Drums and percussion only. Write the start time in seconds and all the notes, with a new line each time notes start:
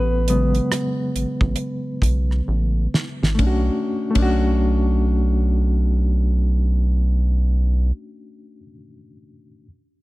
0.28 closed hi-hat
0.55 closed hi-hat
0.72 cross-stick, closed hi-hat
1.16 closed hi-hat
1.41 kick
1.56 closed hi-hat
2.02 kick, closed hi-hat
2.31 cross-stick
2.94 snare
3.23 snare
3.39 kick, ride
4.15 kick, ride